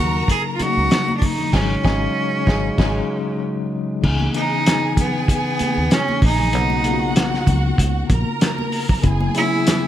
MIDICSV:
0, 0, Header, 1, 7, 480
1, 0, Start_track
1, 0, Tempo, 625000
1, 1180, Time_signature, 4, 2, 24, 8
1, 7585, End_track
2, 0, Start_track
2, 0, Title_t, "Violin section"
2, 0, Program_c, 0, 48
2, 0, Note_on_c, 0, 70, 97
2, 0, Note_on_c, 0, 82, 111
2, 909, Note_off_c, 0, 82, 0
2, 910, Note_off_c, 0, 70, 0
2, 1178, Note_on_c, 0, 80, 92
2, 1179, Note_on_c, 0, 68, 90
2, 1345, Note_off_c, 0, 68, 0
2, 1345, Note_off_c, 0, 80, 0
2, 1413, Note_on_c, 0, 68, 99
2, 1413, Note_on_c, 0, 80, 96
2, 1582, Note_off_c, 0, 68, 0
2, 1582, Note_off_c, 0, 80, 0
2, 1901, Note_on_c, 0, 80, 90
2, 1904, Note_on_c, 0, 68, 89
2, 2067, Note_off_c, 0, 80, 0
2, 2068, Note_off_c, 0, 68, 0
2, 2138, Note_on_c, 0, 80, 93
2, 2140, Note_on_c, 0, 68, 92
2, 2305, Note_off_c, 0, 80, 0
2, 2306, Note_off_c, 0, 68, 0
2, 3103, Note_on_c, 0, 68, 78
2, 3103, Note_on_c, 0, 80, 89
2, 4990, Note_off_c, 0, 68, 0
2, 4990, Note_off_c, 0, 80, 0
2, 5016, Note_on_c, 0, 66, 76
2, 5020, Note_on_c, 0, 78, 91
2, 6193, Note_off_c, 0, 66, 0
2, 6195, Note_off_c, 0, 78, 0
2, 6220, Note_on_c, 0, 70, 73
2, 6222, Note_on_c, 0, 82, 78
2, 6925, Note_off_c, 0, 70, 0
2, 6926, Note_off_c, 0, 82, 0
2, 6941, Note_on_c, 0, 80, 81
2, 6943, Note_on_c, 0, 68, 74
2, 7585, Note_off_c, 0, 68, 0
2, 7585, Note_off_c, 0, 80, 0
2, 7585, End_track
3, 0, Start_track
3, 0, Title_t, "Cello"
3, 0, Program_c, 1, 42
3, 0, Note_on_c, 1, 66, 98
3, 227, Note_off_c, 1, 66, 0
3, 237, Note_on_c, 1, 68, 96
3, 319, Note_off_c, 1, 68, 0
3, 420, Note_on_c, 1, 65, 74
3, 474, Note_on_c, 1, 66, 107
3, 486, Note_off_c, 1, 65, 0
3, 897, Note_off_c, 1, 66, 0
3, 903, Note_on_c, 1, 62, 59
3, 955, Note_on_c, 1, 63, 89
3, 966, Note_off_c, 1, 62, 0
3, 1192, Note_on_c, 1, 61, 101
3, 1203, Note_off_c, 1, 63, 0
3, 2625, Note_off_c, 1, 61, 0
3, 3352, Note_on_c, 1, 63, 102
3, 3795, Note_off_c, 1, 63, 0
3, 3840, Note_on_c, 1, 59, 85
3, 4054, Note_off_c, 1, 59, 0
3, 4084, Note_on_c, 1, 59, 100
3, 4561, Note_on_c, 1, 61, 97
3, 4573, Note_off_c, 1, 59, 0
3, 4790, Note_off_c, 1, 61, 0
3, 4804, Note_on_c, 1, 63, 99
3, 5720, Note_off_c, 1, 63, 0
3, 7202, Note_on_c, 1, 64, 113
3, 7585, Note_off_c, 1, 64, 0
3, 7585, End_track
4, 0, Start_track
4, 0, Title_t, "Tine electric piano"
4, 0, Program_c, 2, 4
4, 0, Control_c, 2, 64, 127
4, 0, Note_on_c, 2, 49, 91
4, 0, Note_on_c, 2, 54, 82
4, 0, Note_on_c, 2, 58, 76
4, 0, Note_on_c, 2, 63, 100
4, 454, Note_off_c, 2, 49, 0
4, 454, Note_on_c, 2, 49, 74
4, 460, Note_off_c, 2, 54, 0
4, 460, Note_on_c, 2, 54, 60
4, 464, Note_off_c, 2, 58, 0
4, 464, Note_on_c, 2, 58, 64
4, 471, Note_off_c, 2, 63, 0
4, 471, Note_on_c, 2, 63, 80
4, 1049, Note_off_c, 2, 49, 0
4, 1052, Note_off_c, 2, 54, 0
4, 1054, Note_off_c, 2, 58, 0
4, 1058, Note_off_c, 2, 63, 0
4, 1174, Note_on_c, 2, 54, 88
4, 1180, Note_on_c, 2, 56, 84
4, 1186, Note_on_c, 2, 63, 93
4, 1189, Control_c, 2, 64, 0
4, 1221, Note_on_c, 2, 49, 83
4, 1328, Control_c, 2, 64, 127
4, 1343, Note_off_c, 2, 54, 0
4, 1346, Note_off_c, 2, 56, 0
4, 1349, Note_off_c, 2, 63, 0
4, 1370, Note_off_c, 2, 49, 0
4, 1415, Note_on_c, 2, 54, 105
4, 1420, Note_on_c, 2, 56, 100
4, 1425, Note_on_c, 2, 63, 107
4, 1461, Note_on_c, 2, 49, 106
4, 1584, Note_off_c, 2, 54, 0
4, 1586, Note_off_c, 2, 56, 0
4, 1589, Note_off_c, 2, 63, 0
4, 1610, Note_off_c, 2, 49, 0
4, 1895, Note_on_c, 2, 49, 92
4, 1897, Note_on_c, 2, 54, 95
4, 1903, Note_on_c, 2, 56, 95
4, 1908, Note_on_c, 2, 63, 90
4, 2063, Note_off_c, 2, 49, 0
4, 2065, Note_off_c, 2, 54, 0
4, 2068, Note_off_c, 2, 56, 0
4, 2071, Note_off_c, 2, 63, 0
4, 2132, Note_on_c, 2, 49, 87
4, 2138, Note_on_c, 2, 54, 94
4, 2143, Note_on_c, 2, 56, 103
4, 2147, Note_on_c, 2, 63, 102
4, 2302, Note_off_c, 2, 49, 0
4, 2305, Note_off_c, 2, 54, 0
4, 2308, Note_off_c, 2, 56, 0
4, 2310, Note_off_c, 2, 63, 0
4, 3091, Note_on_c, 2, 49, 71
4, 3096, Note_on_c, 2, 52, 72
4, 3101, Note_on_c, 2, 59, 66
4, 3106, Note_on_c, 2, 63, 81
4, 3111, Control_c, 2, 64, 0
4, 3224, Control_c, 2, 64, 127
4, 3294, Note_off_c, 2, 49, 0
4, 3296, Note_off_c, 2, 52, 0
4, 3298, Note_off_c, 2, 59, 0
4, 3301, Note_off_c, 2, 63, 0
4, 3336, Note_on_c, 2, 49, 72
4, 3341, Note_on_c, 2, 52, 70
4, 3348, Note_on_c, 2, 59, 68
4, 3351, Note_on_c, 2, 63, 81
4, 4121, Note_off_c, 2, 49, 0
4, 4124, Note_off_c, 2, 52, 0
4, 4127, Note_off_c, 2, 59, 0
4, 4129, Note_off_c, 2, 63, 0
4, 5016, Note_on_c, 2, 49, 65
4, 5019, Note_on_c, 2, 58, 61
4, 5026, Note_on_c, 2, 59, 58
4, 5028, Note_on_c, 2, 63, 73
4, 5030, Control_c, 2, 64, 0
4, 5147, Control_c, 2, 64, 127
4, 5216, Note_off_c, 2, 49, 0
4, 5217, Note_off_c, 2, 58, 0
4, 5221, Note_off_c, 2, 59, 0
4, 5222, Note_off_c, 2, 63, 0
4, 5259, Note_on_c, 2, 49, 79
4, 5263, Note_on_c, 2, 58, 63
4, 5266, Note_on_c, 2, 59, 71
4, 5275, Note_on_c, 2, 65, 65
4, 5321, Note_off_c, 2, 65, 0
4, 5323, Note_on_c, 2, 66, 82
4, 6042, Note_off_c, 2, 49, 0
4, 6045, Note_off_c, 2, 58, 0
4, 6046, Note_off_c, 2, 59, 0
4, 6075, Note_off_c, 2, 66, 0
4, 6930, Note_on_c, 2, 49, 75
4, 6936, Note_on_c, 2, 54, 68
4, 6940, Note_on_c, 2, 59, 75
4, 6948, Note_on_c, 2, 64, 90
4, 6950, Control_c, 2, 64, 0
4, 7092, Control_c, 2, 64, 127
4, 7133, Note_off_c, 2, 49, 0
4, 7136, Note_off_c, 2, 54, 0
4, 7138, Note_off_c, 2, 59, 0
4, 7142, Note_off_c, 2, 64, 0
4, 7171, Note_on_c, 2, 49, 70
4, 7178, Note_on_c, 2, 54, 71
4, 7182, Note_on_c, 2, 58, 54
4, 7187, Note_on_c, 2, 64, 90
4, 7231, Note_on_c, 2, 59, 70
4, 7234, Note_off_c, 2, 58, 0
4, 7585, Note_off_c, 2, 49, 0
4, 7585, Note_off_c, 2, 54, 0
4, 7585, Note_off_c, 2, 59, 0
4, 7585, Note_off_c, 2, 64, 0
4, 7585, End_track
5, 0, Start_track
5, 0, Title_t, "Fingered electric bass"
5, 0, Program_c, 3, 33
5, 0, Note_on_c, 3, 39, 84
5, 164, Note_off_c, 3, 39, 0
5, 595, Note_on_c, 3, 37, 76
5, 677, Note_off_c, 3, 37, 0
5, 1179, Note_on_c, 3, 32, 94
5, 1346, Note_off_c, 3, 32, 0
5, 1420, Note_on_c, 3, 32, 108
5, 1586, Note_off_c, 3, 32, 0
5, 1902, Note_on_c, 3, 32, 97
5, 2067, Note_off_c, 3, 32, 0
5, 2141, Note_on_c, 3, 32, 100
5, 2307, Note_off_c, 3, 32, 0
5, 3101, Note_on_c, 3, 37, 101
5, 3285, Note_off_c, 3, 37, 0
5, 4436, Note_on_c, 3, 39, 74
5, 4518, Note_off_c, 3, 39, 0
5, 4782, Note_on_c, 3, 34, 91
5, 5026, Note_off_c, 3, 34, 0
5, 5026, Note_on_c, 3, 35, 103
5, 5712, Note_off_c, 3, 35, 0
5, 5740, Note_on_c, 3, 37, 87
5, 5924, Note_off_c, 3, 37, 0
5, 5980, Note_on_c, 3, 37, 100
5, 6165, Note_off_c, 3, 37, 0
5, 6223, Note_on_c, 3, 34, 92
5, 6321, Note_off_c, 3, 34, 0
5, 6944, Note_on_c, 3, 30, 104
5, 7127, Note_off_c, 3, 30, 0
5, 7585, End_track
6, 0, Start_track
6, 0, Title_t, "Muted fingered electric bass strokes"
6, 461, Note_on_c, 9, 29, 42
6, 538, Note_off_c, 9, 29, 0
6, 4306, Note_on_c, 9, 29, 42
6, 4383, Note_off_c, 9, 29, 0
6, 7585, End_track
7, 0, Start_track
7, 0, Title_t, "Drums"
7, 217, Note_on_c, 9, 36, 88
7, 226, Note_on_c, 9, 42, 82
7, 293, Note_off_c, 9, 36, 0
7, 303, Note_off_c, 9, 42, 0
7, 457, Note_on_c, 9, 42, 76
7, 459, Note_on_c, 9, 62, 30
7, 459, Note_on_c, 9, 63, 61
7, 534, Note_off_c, 9, 42, 0
7, 536, Note_off_c, 9, 62, 0
7, 536, Note_off_c, 9, 63, 0
7, 692, Note_on_c, 9, 62, 31
7, 700, Note_on_c, 9, 42, 79
7, 704, Note_on_c, 9, 38, 107
7, 769, Note_off_c, 9, 62, 0
7, 777, Note_off_c, 9, 42, 0
7, 781, Note_off_c, 9, 38, 0
7, 831, Note_on_c, 9, 63, 68
7, 907, Note_off_c, 9, 63, 0
7, 936, Note_on_c, 9, 36, 92
7, 936, Note_on_c, 9, 46, 68
7, 936, Note_on_c, 9, 62, 34
7, 1012, Note_off_c, 9, 62, 0
7, 1013, Note_off_c, 9, 36, 0
7, 1013, Note_off_c, 9, 46, 0
7, 1065, Note_on_c, 9, 64, 70
7, 1142, Note_off_c, 9, 64, 0
7, 1178, Note_on_c, 9, 36, 106
7, 1178, Note_on_c, 9, 49, 79
7, 1189, Note_on_c, 9, 38, 90
7, 1254, Note_off_c, 9, 36, 0
7, 1255, Note_off_c, 9, 49, 0
7, 1266, Note_off_c, 9, 38, 0
7, 1418, Note_on_c, 9, 36, 99
7, 1428, Note_on_c, 9, 38, 96
7, 1495, Note_off_c, 9, 36, 0
7, 1505, Note_off_c, 9, 38, 0
7, 1897, Note_on_c, 9, 36, 99
7, 1908, Note_on_c, 9, 38, 99
7, 1974, Note_off_c, 9, 36, 0
7, 1985, Note_off_c, 9, 38, 0
7, 2137, Note_on_c, 9, 36, 107
7, 2137, Note_on_c, 9, 49, 73
7, 2147, Note_on_c, 9, 38, 106
7, 2214, Note_off_c, 9, 36, 0
7, 2214, Note_off_c, 9, 49, 0
7, 2224, Note_off_c, 9, 38, 0
7, 3098, Note_on_c, 9, 49, 94
7, 3099, Note_on_c, 9, 36, 109
7, 3175, Note_off_c, 9, 49, 0
7, 3176, Note_off_c, 9, 36, 0
7, 3224, Note_on_c, 9, 63, 63
7, 3301, Note_off_c, 9, 63, 0
7, 3336, Note_on_c, 9, 42, 69
7, 3340, Note_on_c, 9, 62, 29
7, 3413, Note_off_c, 9, 42, 0
7, 3417, Note_off_c, 9, 62, 0
7, 3582, Note_on_c, 9, 42, 100
7, 3582, Note_on_c, 9, 62, 30
7, 3590, Note_on_c, 9, 38, 113
7, 3659, Note_off_c, 9, 42, 0
7, 3659, Note_off_c, 9, 62, 0
7, 3667, Note_off_c, 9, 38, 0
7, 3818, Note_on_c, 9, 36, 82
7, 3819, Note_on_c, 9, 62, 36
7, 3819, Note_on_c, 9, 64, 74
7, 3821, Note_on_c, 9, 42, 69
7, 3895, Note_off_c, 9, 36, 0
7, 3896, Note_off_c, 9, 62, 0
7, 3896, Note_off_c, 9, 64, 0
7, 3897, Note_off_c, 9, 42, 0
7, 4058, Note_on_c, 9, 36, 96
7, 4060, Note_on_c, 9, 62, 29
7, 4064, Note_on_c, 9, 42, 84
7, 4134, Note_off_c, 9, 36, 0
7, 4137, Note_off_c, 9, 62, 0
7, 4141, Note_off_c, 9, 42, 0
7, 4295, Note_on_c, 9, 42, 75
7, 4302, Note_on_c, 9, 63, 67
7, 4372, Note_off_c, 9, 42, 0
7, 4379, Note_off_c, 9, 63, 0
7, 4535, Note_on_c, 9, 62, 36
7, 4541, Note_on_c, 9, 42, 90
7, 4545, Note_on_c, 9, 38, 99
7, 4612, Note_off_c, 9, 62, 0
7, 4617, Note_off_c, 9, 42, 0
7, 4622, Note_off_c, 9, 38, 0
7, 4673, Note_on_c, 9, 63, 66
7, 4750, Note_off_c, 9, 63, 0
7, 4776, Note_on_c, 9, 46, 72
7, 4776, Note_on_c, 9, 62, 37
7, 4777, Note_on_c, 9, 36, 89
7, 4853, Note_off_c, 9, 46, 0
7, 4853, Note_off_c, 9, 62, 0
7, 4854, Note_off_c, 9, 36, 0
7, 4906, Note_on_c, 9, 64, 78
7, 4983, Note_off_c, 9, 64, 0
7, 5015, Note_on_c, 9, 42, 87
7, 5017, Note_on_c, 9, 62, 26
7, 5092, Note_off_c, 9, 42, 0
7, 5094, Note_off_c, 9, 62, 0
7, 5145, Note_on_c, 9, 63, 69
7, 5221, Note_off_c, 9, 63, 0
7, 5254, Note_on_c, 9, 42, 76
7, 5331, Note_off_c, 9, 42, 0
7, 5498, Note_on_c, 9, 42, 100
7, 5506, Note_on_c, 9, 38, 106
7, 5575, Note_off_c, 9, 42, 0
7, 5583, Note_off_c, 9, 38, 0
7, 5638, Note_on_c, 9, 38, 37
7, 5715, Note_off_c, 9, 38, 0
7, 5737, Note_on_c, 9, 36, 86
7, 5737, Note_on_c, 9, 64, 73
7, 5740, Note_on_c, 9, 42, 69
7, 5813, Note_off_c, 9, 36, 0
7, 5813, Note_off_c, 9, 64, 0
7, 5816, Note_off_c, 9, 42, 0
7, 5977, Note_on_c, 9, 36, 89
7, 5985, Note_on_c, 9, 42, 84
7, 6054, Note_off_c, 9, 36, 0
7, 6062, Note_off_c, 9, 42, 0
7, 6218, Note_on_c, 9, 42, 75
7, 6219, Note_on_c, 9, 36, 111
7, 6219, Note_on_c, 9, 63, 70
7, 6295, Note_off_c, 9, 36, 0
7, 6295, Note_off_c, 9, 42, 0
7, 6296, Note_off_c, 9, 63, 0
7, 6452, Note_on_c, 9, 62, 34
7, 6461, Note_on_c, 9, 42, 94
7, 6466, Note_on_c, 9, 38, 103
7, 6529, Note_off_c, 9, 62, 0
7, 6538, Note_off_c, 9, 42, 0
7, 6543, Note_off_c, 9, 38, 0
7, 6592, Note_on_c, 9, 63, 64
7, 6669, Note_off_c, 9, 63, 0
7, 6698, Note_on_c, 9, 46, 73
7, 6775, Note_off_c, 9, 46, 0
7, 6826, Note_on_c, 9, 64, 75
7, 6830, Note_on_c, 9, 36, 98
7, 6903, Note_off_c, 9, 64, 0
7, 6907, Note_off_c, 9, 36, 0
7, 6939, Note_on_c, 9, 42, 91
7, 6940, Note_on_c, 9, 36, 113
7, 6940, Note_on_c, 9, 62, 25
7, 7015, Note_off_c, 9, 42, 0
7, 7017, Note_off_c, 9, 36, 0
7, 7017, Note_off_c, 9, 62, 0
7, 7069, Note_on_c, 9, 63, 69
7, 7146, Note_off_c, 9, 63, 0
7, 7178, Note_on_c, 9, 42, 70
7, 7255, Note_off_c, 9, 42, 0
7, 7424, Note_on_c, 9, 42, 107
7, 7432, Note_on_c, 9, 38, 105
7, 7501, Note_off_c, 9, 42, 0
7, 7508, Note_off_c, 9, 38, 0
7, 7585, End_track
0, 0, End_of_file